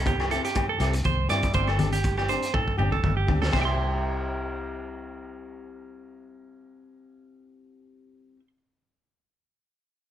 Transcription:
0.00 0.38 C2 medium
0.06 0.30 G4 medium
0.06 kick medium
0.06 closed hi-hat soft
0.06 high conga medium
0.20 cross-stick medium
0.20 low agogo medium
0.30 0.48 C4 soft
0.30 0.47 E4 soft
0.30 0.46 G4 medium
0.30 0.44 A4 medium
0.30 closed hi-hat soft
0.30 muted conga soft
0.45 0.68 G4 medium
0.45 closed hi-hat soft
0.55 kick medium
0.55 cross-stick medium
0.55 closed hi-hat soft
0.55 muted conga soft
0.55 high conga medium
0.55 low agogo medium
0.69 0.93 A4 medium
0.79 1.00 C2 medium
0.79 0.97 C4 soft
0.79 0.96 E4 soft
0.79 0.95 G4 soft
0.79 cross-stick medium
0.79 closed hi-hat soft
0.79 muted conga soft
0.79 low agogo medium
0.93 muted clean electric guitar stroke medium
0.93 closed hi-hat soft
1.04 1.25 C2 medium
1.04 1.29 C5 medium
1.04 kick medium
1.04 closed hi-hat soft
1.04 high conga medium
1.29 1.50 G2 medium
1.29 1.47 C4 medium
1.29 1.46 E4 medium
1.29 1.45 G4 medium
1.29 1.53 D5 medium
1.29 cross-stick medium
1.29 closed hi-hat soft
1.29 low agogo medium
1.43 kick medium
1.43 closed hi-hat soft
1.53 2.36 G1 medium
1.53 1.70 G3 medium
1.53 1.70 C4 medium
1.53 1.70 D4 medium
1.53 1.71 G4 medium
1.53 1.67 C5 medium
1.53 kick medium
1.53 closed hi-hat soft
1.53 muted conga soft
1.68 1.91 A4 medium
1.68 cross-stick medium
1.68 low agogo medium
1.79 1.96 C4 soft
1.79 1.96 D4 medium
1.79 1.95 G4 medium
1.79 closed hi-hat soft
1.79 high conga medium
1.92 2.16 G4 medium
1.92 closed hi-hat soft
2.04 kick medium
2.04 closed hi-hat soft
2.17 2.28 G4 medium
2.17 cross-stick medium
2.17 low agogo medium
2.29 2.46 C4 soft
2.29 2.45 D4 soft
2.29 2.45 G4 medium
2.29 2.53 C5 medium
2.29 closed hi-hat soft
2.43 closed hi-hat soft
2.54 2.77 A4 medium
2.54 kick medium
2.54 muted conga soft
2.54 low conga medium
2.54 low agogo medium
2.68 kick soft
2.78 2.99 G1 medium
2.78 2.95 C4 soft
2.78 2.95 D4 soft
2.78 2.94 G4 medium
2.78 2.91 G4 medium
2.78 muted conga soft
2.78 low conga medium
2.78 low agogo medium
2.92 3.15 A4 medium
2.92 kick soft
3.04 3.24 G1 medium
3.04 kick medium
3.04 high conga medium
3.17 3.40 G4 medium
3.27 3.49 D2 medium
3.27 3.45 C4 soft
3.27 3.44 D4 soft
3.27 3.43 G4 medium
3.27 kick medium
3.27 high conga medium
3.27 low agogo medium
3.42 3.52 A4 medium
3.42 snare medium
3.50 8.36 C2 medium
3.50 8.36 G3 medium
3.50 8.39 C4 medium
3.50 3.61 C5 medium
3.50 kick medium
3.50 snare medium
3.50 crash medium
3.50 muted conga medium
3.50 low agogo medium
3.56 8.42 E4 medium
3.56 8.44 G4 medium
3.56 8.39 E5 medium
3.61 3.65 G5 medium
3.61 8.47 C6 medium

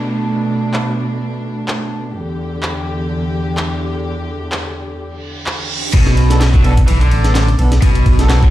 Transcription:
0.00 2.12 B2 medium
0.00 2.12 A3 medium
0.00 2.12 D4 medium
0.00 downlifter medium
0.74 clap medium
1.68 clap loud
2.15 5.90 E2 medium
2.15 5.90 D3 medium
2.15 5.90 G4 medium
2.63 clap loud
3.57 clap loud
4.52 clap loud
4.99 reverse cymbal medium
5.46 clap loud
5.93 6.84 B1 loud
5.93 6.39 B2 medium
5.93 kick loud
5.93 closed hi-hat medium
5.93 crash medium
5.93 ride medium
6.07 snare medium
6.07 closed hi-hat soft
6.17 ride medium
6.30 6.43 B3 medium
6.30 6.43 D4 medium
6.30 6.43 A4 loud
6.30 snare medium
6.30 closed hi-hat medium
6.41 6.49 B2 medium
6.41 snare loud
6.41 clap loud
6.41 closed hi-hat medium
6.41 ride medium
6.54 6.64 F#3 medium
6.54 kick loud
6.54 closed hi-hat soft
6.64 6.72 B2 medium
6.64 6.79 B3 medium
6.64 6.79 D4 medium
6.64 6.79 A4 loud
6.64 ride medium
6.77 kick medium
6.77 closed hi-hat medium
6.88 7.12 B1 medium
6.88 7.00 E3 medium
6.88 closed hi-hat medium
6.88 ride medium
7.01 7.47 D3 loud
7.01 closed hi-hat soft
7.11 7.56 A1 loud
7.11 ride medium
7.24 7.37 B3 medium
7.24 7.37 D4 medium
7.24 7.37 A4 medium
7.24 snare medium
7.24 closed hi-hat medium
7.35 snare loud
7.35 clap loud
7.35 closed hi-hat medium
7.35 ride medium
7.48 closed hi-hat soft
7.59 7.78 B1 medium
7.59 7.73 B3 medium
7.59 7.74 D4 medium
7.59 7.73 A4 medium
7.59 ride medium
7.72 snare medium
7.72 closed hi-hat medium
7.82 8.50 B1 loud
7.82 8.28 B2 medium
7.82 kick loud
7.82 closed hi-hat medium
7.82 ride medium
7.95 closed hi-hat soft
7.95 ride soft
8.06 kick medium
8.06 ride medium
8.19 8.41 B3 medium
8.19 8.41 D4 medium
8.19 8.41 A4 medium
8.19 snare medium
8.19 closed hi-hat medium
8.29 8.38 B2 medium
8.29 snare loud
8.29 clap loud
8.29 closed hi-hat medium
8.29 ride medium
8.43 8.50 F#3 medium
8.43 kick loud
8.43 closed hi-hat soft

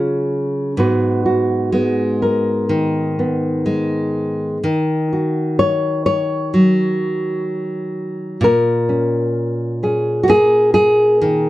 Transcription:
0.00 0.77 C#3 medium
0.00 1.72 F#3 medium
0.00 0.71 C#4 medium
0.00 0.72 F4 soft
0.00 0.77 G#4 medium
0.77 4.63 G#2 medium
0.77 1.72 B3 soft
0.77 1.24 F#4 medium
0.77 2.21 B4 medium
1.26 4.57 F#4 soft
1.72 3.65 G#3 medium
1.72 3.17 B3 soft
2.22 4.58 A#4 medium
2.69 4.57 D#3 medium
3.19 4.64 B3 medium
3.66 4.57 G#3 soft
4.64 8.37 D#3 medium
5.13 8.37 F#4 soft
5.59 6.05 C#5 medium
6.06 8.42 C#5 loud
6.54 8.42 F#3 medium
8.41 11.49 A#2 medium
8.41 9.83 A#4 medium
8.89 9.82 C#4 soft
9.83 11.49 C#4 soft
9.83 10.28 G#4 soft
10.23 10.30 F#4 medium
10.28 11.49 A#3 medium
10.28 10.73 G#4 loud
10.74 11.49 G#4 loud
11.21 11.49 D#3 medium

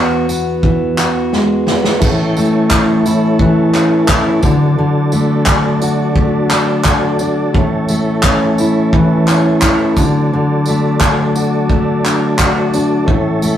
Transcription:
0.00 2.02 E2 medium
0.00 0.28 B3 medium
0.00 0.97 F#4 medium
0.29 1.67 B3 medium
0.29 tambourine medium
0.63 3.40 E3 medium
0.63 kick loud
0.98 2.09 F#4 medium
0.98 clap medium
0.98 tambourine medium
1.33 2.09 G#3 medium
1.33 snare medium
1.67 2.10 B3 medium
1.67 snare medium
1.84 snare medium
1.99 4.51 A2 medium
1.99 4.40 E3 medium
1.99 4.40 C#4 medium
1.99 13.57 A4 medium
1.99 kick loud
1.99 crash medium
2.37 5.13 A3 medium
2.37 tambourine medium
2.71 3.73 C#4 medium
2.71 kick loud
2.71 clap loud
3.06 4.08 E4 medium
3.06 tambourine medium
3.39 4.43 E3 medium
3.39 kick loud
3.74 4.50 C#4 medium
3.74 clap medium
3.74 tambourine medium
4.08 4.51 E4 medium
4.08 kick loud
4.08 clap loud
4.42 4.77 D3 medium
4.42 7.51 F#3 medium
4.42 7.51 D4 medium
4.42 kick loud
4.42 tambourine medium
4.79 7.55 D3 medium
5.12 6.16 A3 medium
5.12 tambourine medium
5.46 6.50 D4 medium
5.46 kick loud
5.46 clap loud
5.82 6.84 F#4 medium
5.82 tambourine medium
6.16 7.89 A3 medium
6.16 kick loud
6.50 7.19 D4 medium
6.50 clap medium
6.50 tambourine medium
6.85 7.62 F#4 medium
6.85 kick loud
6.85 clap loud
7.19 7.62 D4 medium
7.19 tambourine medium
7.53 10.04 A2 medium
7.53 9.94 E3 medium
7.53 9.94 C#4 medium
7.53 kick loud
7.88 10.68 A3 medium
7.88 tambourine medium
8.23 9.28 C#4 medium
8.23 kick loud
8.23 clap loud
8.58 9.62 E4 medium
8.58 tambourine medium
8.93 9.98 E3 medium
8.93 kick loud
9.28 10.05 C#4 medium
9.28 clap medium
9.28 tambourine medium
9.62 10.04 E4 medium
9.62 kick loud
9.62 clap loud
9.96 10.32 D3 medium
9.96 13.05 F#3 medium
9.96 13.05 D4 medium
9.96 kick medium
9.96 tambourine medium
10.33 13.09 D3 medium
10.66 11.70 A3 medium
10.66 tambourine medium
11.01 12.04 D4 medium
11.01 kick loud
11.01 clap loud
11.36 12.38 F#4 medium
11.36 tambourine medium
11.70 13.43 A3 medium
11.70 kick loud
12.05 12.73 D4 medium
12.05 clap medium
12.05 tambourine medium
12.39 13.15 F#4 medium
12.39 kick loud
12.39 clap loud
12.74 13.15 D4 medium
12.74 tambourine medium
13.06 13.57 A2 medium
13.06 13.57 E3 medium
13.06 13.57 C#4 medium
13.06 kick loud
13.42 13.57 A3 medium
13.42 tambourine medium

